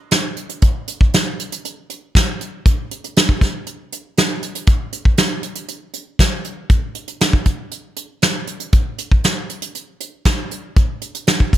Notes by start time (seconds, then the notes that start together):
0.11 snare, closed hi-hat
0.37 closed hi-hat
0.49 closed hi-hat
0.62 kick, closed hi-hat
0.88 closed hi-hat
1.01 kick
1.13 snare, closed hi-hat
1.39 closed hi-hat
1.52 closed hi-hat
1.65 closed hi-hat
1.90 closed hi-hat
2.15 kick, snare, closed hi-hat
2.41 closed hi-hat
2.66 kick, closed hi-hat
2.91 closed hi-hat
3.04 closed hi-hat
3.16 snare, closed hi-hat
3.29 kick
3.41 kick, snare, closed hi-hat
3.67 closed hi-hat
3.92 closed hi-hat
4.17 snare, closed hi-hat
4.43 closed hi-hat
4.55 closed hi-hat
4.67 kick, closed hi-hat
4.92 closed hi-hat
5.05 kick
5.17 snare, closed hi-hat
5.43 closed hi-hat
5.55 closed hi-hat
5.68 closed hi-hat
5.93 closed hi-hat
6.19 kick, snare, closed hi-hat
6.44 closed hi-hat
6.70 kick, closed hi-hat
6.95 closed hi-hat
7.08 closed hi-hat
7.20 snare, closed hi-hat
7.33 kick
7.45 kick, closed hi-hat
7.71 closed hi-hat
7.96 closed hi-hat
8.22 snare, closed hi-hat
8.47 closed hi-hat
8.60 closed hi-hat
8.72 kick, closed hi-hat
8.98 closed hi-hat
9.12 kick
9.24 snare, closed hi-hat
9.49 closed hi-hat
9.62 closed hi-hat
9.75 closed hi-hat
10.00 closed hi-hat
10.25 kick, snare, closed hi-hat
10.51 closed hi-hat
10.76 kick, closed hi-hat
11.02 closed hi-hat
11.15 closed hi-hat
11.27 snare, closed hi-hat
11.40 kick
11.53 kick, closed hi-hat